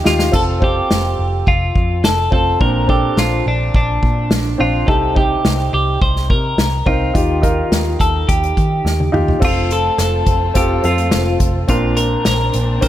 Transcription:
Already playing: grand piano D#3 D#4 F4 G4
0.04 picked electric bass D#2, grand piano D#4 F4 G4, clean electric guitar F4, snare
0.19 snare
0.32 picked electric bass F1, grand piano C4 F4 A4, clean electric guitar A4, kick, splash
0.60 grand piano C4 F4 C5, clean electric guitar G4, kick
0.91 picked electric bass F1, snare
1.19 picked electric bass F1
1.47 picked electric bass F1, clean electric guitar F4, kick
1.75 picked electric bass F2, kick
2.04 picked electric bass F1, clean electric guitar A4, snare
2.31 picked electric bass F1, grand piano C4 F4 C5, clean electric guitar A4, kick
2.60 picked electric bass A#1, grand piano A#2 C4 D4 A#4, clean electric guitar A#4, kick
2.88 grand piano C4 D4 A4, clean electric guitar G4, kick
3.17 picked electric bass A#1, clean electric guitar F4, snare
3.46 picked electric bass A#1, clean electric guitar D4
3.74 picked electric bass A#1, clean electric guitar D4, kick
4.03 picked electric bass A#2, kick
4.31 picked electric bass A#1, snare
4.58 picked electric bass A#1, grand piano C4 D4 C5, clean electric guitar F4
4.86 picked electric bass C2, grand piano C3 C4 D#4 G4, clean electric guitar A4, kick
5.15 grand piano C4 D#4 G4, clean electric guitar G4, kick
5.45 picked electric bass C2, snare
5.73 picked electric bass C2, clean electric guitar G4
6.02 picked electric bass C2, clean electric guitar C5, kick
6.16 snare
6.30 picked electric bass C3, clean electric guitar A#4, kick
6.58 picked electric bass C2, snare
6.86 picked electric bass C2, grand piano C4 D#4 A#4, clean electric guitar F4, kick
7.14 picked electric bass D#2, grand piano D#3 D#4 F4 G4, kick, closed hi-hat
7.42 grand piano D#4 F4 A#4, kick, closed hi-hat
7.72 picked electric bass D#2, snare, closed hi-hat
8.00 picked electric bass D#2, clean electric guitar A4, kick, closed hi-hat
8.29 picked electric bass D#2, clean electric guitar G4, kick, closed hi-hat
8.43 closed hi-hat
8.57 picked electric bass D#3, kick, closed hi-hat
8.85 picked electric bass D#2, snare
9.00 high tom
9.12 picked electric bass D#2, grand piano D#4 F4 G4, mid tom
9.28 floor tom
9.40 picked electric bass F1, string section A3 C4 F4, grand piano C4 F4 A4, kick, crash
9.45 clean electric guitar F4
9.71 clean electric guitar A4, closed hi-hat
9.98 picked electric bass F1, clean electric guitar A4, snare, closed hi-hat
10.26 picked electric bass F1, kick, closed hi-hat
10.54 picked electric bass F1, grand piano C4 F4 A4, clean electric guitar G4, kick, closed hi-hat
10.83 picked electric bass F2, grand piano C4 F4 A4, clean electric guitar F4, closed hi-hat
10.98 closed hi-hat
11.11 picked electric bass F1, snare, closed hi-hat
11.40 picked electric bass F1, kick, closed hi-hat
11.68 picked electric bass A#1, grand piano A#2 C4 D4 A#4, string section A#3 C4 D4, clean electric guitar F4, kick, closed hi-hat
11.97 clean electric guitar A#4, closed hi-hat
12.25 picked electric bass A#1, clean electric guitar A#4, snare, closed hi-hat
12.53 picked electric bass A#1, closed hi-hat
12.81 picked electric bass A#1, grand piano C4 D4 A#4, clean electric guitar C5, kick, closed hi-hat

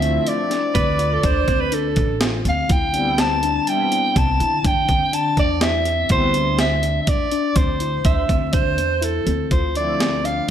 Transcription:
Already playing: upright bass D2, soprano saxophone E5
0.02 analog synth pad F3 A3 C4 E4, tine electric piano D4, closed hi-hat
0.27 soprano saxophone D5, closed hi-hat
0.50 tine electric piano D4, snare, closed hi-hat
0.75 upright bass D2, tine electric piano C4, alto saxophone B4, kick, closed hi-hat
0.99 tine electric piano F4, closed hi-hat
1.13 alto saxophone A4
1.23 upright bass D2, tine electric piano D4, alto saxophone C5, kick, closed hi-hat
1.48 upright bass D2, tine electric piano C4, kick, closed hi-hat
1.61 alto saxophone B4
1.72 tine electric piano D4, alto saxophone A4, closed hi-hat
1.96 upright bass A1, kick, closed hi-hat
2.20 tine electric piano F4, snare, closed hi-hat
2.45 upright bass D2, tine electric piano C4, soprano saxophone F5, closed hi-hat
2.69 upright bass D2, tine electric piano E4, soprano saxophone G5, kick, closed hi-hat
2.93 analog synth pad G3 B3 C4 E4, tine electric piano D4, closed hi-hat
3.18 tine electric piano C4, soprano saxophone A5, snare, closed hi-hat
3.43 tine electric piano D4, closed hi-hat
3.66 analog synth pad G3 B3 C4 E4, soprano saxophone G5, closed hi-hat
3.92 tine electric piano D4, closed hi-hat
4.16 upright bass C2, tine electric piano C4, soprano saxophone A5, kick, closed hi-hat
4.40 upright bass D3, tine electric piano E4, closed hi-hat
4.64 upright bass D3, tine electric piano D4, soprano saxophone G5, kick, closed hi-hat
4.89 upright bass D3, tine electric piano C4, kick, closed hi-hat
5.13 tine electric piano D4, soprano saxophone A5, closed hi-hat
5.37 upright bass E2, soprano saxophone D5, kick, closed hi-hat
5.61 tine electric piano E4, soprano saxophone E5, snare, closed hi-hat
5.85 tine electric piano C4, closed hi-hat
6.09 upright bass D2, analog synth pad G3 B3 C4 E4, tine electric piano E4, soprano saxophone C5, kick, closed hi-hat
6.34 tine electric piano D4, closed hi-hat
6.58 tine electric piano C4, soprano saxophone E5, snare, closed hi-hat
6.82 tine electric piano D4, closed hi-hat
7.02 soprano saxophone E5
7.07 soprano saxophone D5, kick, closed hi-hat
7.32 tine electric piano D4, closed hi-hat
7.56 upright bass D2, tine electric piano C4, soprano saxophone C5, kick, closed hi-hat
7.80 tine electric piano E4, closed hi-hat
8.05 upright bass D2, tine electric piano D4, alto saxophone E5, kick, closed hi-hat
8.29 upright bass D2, tine electric piano C4, kick, closed hi-hat
8.53 tine electric piano D4, alto saxophone C5, kick, closed hi-hat
8.78 upright bass E2, closed hi-hat
9.02 tine electric piano E4, alto saxophone A4, closed hi-hat
9.26 upright bass D2, tine electric piano C4, closed hi-hat
9.51 upright bass D2, tine electric piano F4, soprano saxophone C5, kick, closed hi-hat
9.75 analog synth pad F3 A3 C4 E4, tine electric piano D4, soprano saxophone D5, closed hi-hat
10.00 tine electric piano C4, snare, closed hi-hat
10.24 tine electric piano D4, soprano saxophone F5, closed hi-hat

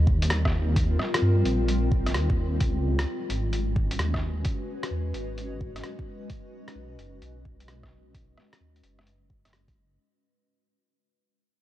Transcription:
Already playing: detuned saw bass D#2, ambient pad G3 C4 F4 A#4 D#5
0.07 kick
0.22 closed hi-hat
0.30 cross-stick, closed hi-hat
0.45 kick, cross-stick
0.76 kick, closed hi-hat
0.99 cross-stick
1.14 cross-stick, closed hi-hat
1.22 detuned saw bass G2
1.45 detuned saw bass A#1, closed hi-hat
1.68 closed hi-hat
1.92 kick
2.06 cross-stick, closed hi-hat
2.14 detuned saw bass D#2, cross-stick, closed hi-hat
2.30 kick
2.60 detuned saw bass C#2, ambient pad G#3, kick, closed hi-hat
2.82 ambient pad C#4
2.99 cross-stick, closed hi-hat
3.22 ambient pad F#4
3.30 detuned saw bass G#1, closed hi-hat
3.42 ambient pad B4
3.53 closed hi-hat
3.76 kick
3.91 closed hi-hat
3.99 detuned saw bass D#2, cross-stick, closed hi-hat
4.07 ambient pad D#5
4.14 kick, cross-stick
4.45 kick, closed hi-hat
4.83 cross-stick, closed hi-hat
4.91 detuned saw bass E2
5.14 detuned saw bass G#1, closed hi-hat
5.38 closed hi-hat
5.61 kick
5.76 cross-stick, closed hi-hat
5.84 cross-stick, closed hi-hat
5.99 kick
6.30 kick, closed hi-hat
6.68 cross-stick, closed hi-hat
6.75 detuned saw bass B1
6.99 detuned saw bass F#1, closed hi-hat
7.22 detuned saw bass B1, closed hi-hat
7.45 kick
7.60 closed hi-hat
7.68 cross-stick, closed hi-hat
7.83 kick, cross-stick
8.15 kick, closed hi-hat
8.37 cross-stick
8.53 cross-stick, closed hi-hat
8.61 detuned saw bass D#2
8.76 closed hi-hat
8.83 detuned saw bass F#1, closed hi-hat
8.99 cross-stick
9.07 closed hi-hat
9.30 detuned saw bass F#1, kick
9.45 cross-stick, closed hi-hat
9.53 cross-stick, closed hi-hat
9.68 kick, closed hi-hat

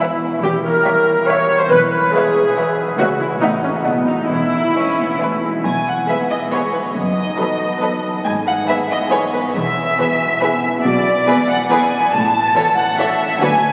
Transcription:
Already playing: harp E3 G#3 E4 B4, viola section E4
0.00 harp F#4, violin section B4 E5 G#5
0.22 harp E4
0.42 double bass section E1, cello section E2, harp E3, viola section G4
0.64 viola section A#4, harp C#5
0.84 harp G3, violin section C#5 E5 G5
1.07 harp E4
1.27 harp F#4, viola section C#5, violin section C#5 E5 G5
1.49 harp E4
1.60 viola section C5
1.70 double bass section E1, cello section E2, harp E3, viola section B4
1.92 harp B4, viola section B4
2.12 harp G#3, viola section G#4, violin section B4 E5 G#5
2.34 harp E4
2.55 harp F#4, violin section B4 E5 G#5
2.78 harp E4
2.98 cello section C#2, double bass section C#2, harp C#3, viola section F#4, violin section C#5 E5 G#5
3.20 harp E4 C#5, viola section E4
3.42 double bass section A1, harp A2, cello section A2, viola section D#4, violin section E5 F#5 A5
3.63 viola section C#4, harp E4 C#5
3.85 double bass section B1, harp B2, cello section B2, viola section B3, violin section D#5 F#5 A5
4.07 viola section D#4, harp D#4 A4
4.29 double bass section E1, cello section E2, harp E3, viola section E4
4.52 harp G#4
4.75 harp G#3, cello section C#4, violin section B4 E5 G#5
4.97 cello section B3, harp E4
5.20 cello section A3, harp F#4, violin section B4 E5 G#5
5.43 cello section G#3, harp E4
5.65 double bass section E1, cello section E2, harp E3, violin section G#5, triangle
5.87 harp G#4, violin section F#5
6.08 viola section G#3 B3, harp B3, violin section G#4 B4 E5
6.30 harp E4, violin section D#5
6.52 viola section G#3 B3, harp F#4, violin section G#4 B4 C#5
6.73 harp E4, violin section B4
6.96 double bass section F#1, cello section F#2, harp F#2, violin section D#5
7.17 harp D#4
7.38 viola section F#3 B3, harp F#3, violin section A4 B4
7.61 harp B3
7.81 viola section F#3 B3, harp C#4, violin section A4 B4
8.05 harp B3
8.24 double bass section G#1, cello section G#2, harp G#2, violin section G#5
8.47 harp E4, violin section F#5
8.68 viola section E3 B3, harp G#3, violin section G#4 B4 E5
8.90 harp B3, violin section D#5
9.12 viola section E3 B3, harp C#4, violin section G#4 B4 C#5
9.33 harp B3, violin section B4
9.56 double bass section E1, harp E2, cello section E2, violin section E5
9.77 harp E4
9.98 harp B2, viola section E3 B3, violin section G#4 B4
10.20 harp B3
10.41 viola section E3 B3, harp C#4, violin section G#4 B4
10.63 harp B3
10.83 double bass section B1, harp B2, cello section B2, violin section D5
11.05 harp E4
11.27 viola section E3 B3, harp G#3, violin section G#4 B4
11.48 harp B3, violin section F#5
11.69 viola section E3 B3, harp C#4, violin section G#4 B4 G#5
11.92 harp B3
12.12 double bass section A1, harp A2, cello section A2, violin section A5
12.34 harp E4
12.55 viola section E3 E4, harp E3, violin section A4 C#5
12.76 harp C#4, violin section F#5
12.97 viola section E3 E4, harp D4, violin section A4 C#5 E5
13.21 harp C#4
13.41 cello section D2, double bass section D2, harp D3, viola section F#3 D4, violin section F#4 B4 G#5
13.63 harp F#4 B4

